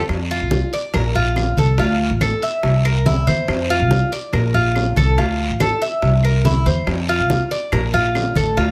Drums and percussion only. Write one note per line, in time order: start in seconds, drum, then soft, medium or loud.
0.09 high bongo medium
0.09 long guiro medium
0.09 claves medium
0.30 high conga soft
0.51 high bongo medium
0.51 high conga loud
0.51 short guiro medium
0.73 high bongo soft
0.73 high conga soft
0.73 short guiro medium
0.94 high bongo medium
0.94 high conga soft
0.94 low conga medium
0.94 long guiro medium
0.94 claves medium
1.15 high bongo soft
1.15 high conga soft
1.15 low conga medium
1.36 high bongo soft
1.36 low bongo medium
1.36 high conga soft
1.36 short guiro medium
1.36 claves medium
1.57 high bongo soft
1.57 high conga medium
1.57 short guiro medium
1.78 high bongo medium
1.78 high conga soft
1.78 long guiro medium
1.99 high conga soft
2.21 high bongo medium
2.21 high conga medium
2.21 short guiro medium
2.21 claves medium
2.42 high bongo soft
2.42 short guiro medium
2.63 high bongo medium
2.63 high conga soft
2.63 long guiro medium
2.85 high bongo soft
2.85 high conga soft
2.85 claves medium
3.06 high bongo soft
3.06 low bongo medium
3.06 high conga medium
3.06 short guiro medium
3.27 high bongo soft
3.27 high conga medium
3.27 short guiro medium
3.48 high bongo medium
3.48 high conga soft
3.48 long guiro medium
3.48 claves medium
3.70 high conga soft
3.91 high bongo medium
3.91 high conga loud
3.91 short guiro medium
4.12 high bongo soft
4.12 high conga soft
4.12 short guiro medium
4.33 high bongo medium
4.33 high conga soft
4.33 low conga medium
4.33 long guiro medium
4.33 claves medium
4.54 high bongo soft
4.54 high conga soft
4.54 low conga medium
4.75 high bongo soft
4.75 low bongo medium
4.75 high conga soft
4.75 short guiro medium
4.75 claves medium
4.96 high bongo soft
4.96 high conga loud
4.96 short guiro medium
5.18 high bongo medium
5.18 high conga soft
5.18 long guiro medium
5.39 high conga soft
5.60 high bongo medium
5.60 high conga loud
5.60 short guiro medium
5.60 claves medium
5.81 high bongo soft
5.81 short guiro medium
6.02 high bongo medium
6.02 high conga soft
6.02 long guiro medium
6.23 high bongo soft
6.23 high conga soft
6.23 claves medium
6.45 high bongo soft
6.45 low bongo medium
6.45 high conga medium
6.45 short guiro medium
6.66 high bongo soft
6.66 high conga medium
6.66 short guiro medium
6.87 high bongo medium
6.87 high conga soft
6.87 long guiro medium
6.87 claves medium
7.09 high conga soft
7.30 high bongo medium
7.30 high conga loud
7.30 short guiro medium
7.51 high bongo soft
7.51 high conga soft
7.51 short guiro medium
7.72 high bongo medium
7.72 high conga soft
7.72 low conga medium
7.72 long guiro medium
7.72 claves medium
7.93 high bongo soft
7.93 high conga soft
7.93 low conga medium
8.15 high bongo soft
8.15 low bongo medium
8.15 high conga soft
8.15 short guiro medium
8.15 claves medium
8.36 high bongo soft
8.36 high conga medium
8.36 short guiro medium
8.57 high bongo medium
8.57 high conga soft
8.57 long guiro medium